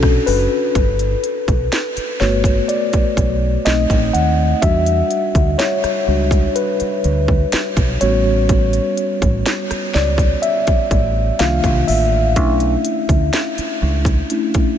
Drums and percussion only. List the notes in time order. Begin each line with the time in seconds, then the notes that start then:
0.03 kick, cross-stick
0.27 open hi-hat
0.75 kick, closed hi-hat
0.99 closed hi-hat
1.24 closed hi-hat
1.48 kick, closed hi-hat
1.72 snare, closed hi-hat
1.97 closed hi-hat
2.20 snare
2.44 kick, closed hi-hat
2.69 closed hi-hat
2.93 kick, closed hi-hat
3.17 kick, closed hi-hat
3.66 snare, closed hi-hat
3.90 kick, closed hi-hat
4.15 closed hi-hat
4.62 kick, closed hi-hat
4.86 closed hi-hat
5.11 closed hi-hat
5.35 kick, closed hi-hat
5.59 snare, closed hi-hat
5.84 cross-stick, closed hi-hat
6.31 kick, closed hi-hat
6.56 closed hi-hat
6.80 closed hi-hat
7.04 closed hi-hat
7.28 kick
7.52 snare, closed hi-hat
7.77 kick, closed hi-hat
8.01 closed hi-hat
8.49 kick, closed hi-hat
8.73 closed hi-hat
8.97 closed hi-hat
9.22 kick, closed hi-hat
9.46 snare, closed hi-hat
9.71 cross-stick, closed hi-hat
9.94 snare
10.18 kick, closed hi-hat
10.43 closed hi-hat
10.67 kick, closed hi-hat
10.91 kick, closed hi-hat
11.39 snare, closed hi-hat
11.64 kick, closed hi-hat
11.88 open hi-hat
12.36 kick, closed hi-hat
12.60 closed hi-hat
12.85 closed hi-hat
13.09 kick, closed hi-hat
13.33 snare, closed hi-hat
13.58 closed hi-hat
14.05 kick, closed hi-hat
14.30 closed hi-hat
14.54 kick, closed hi-hat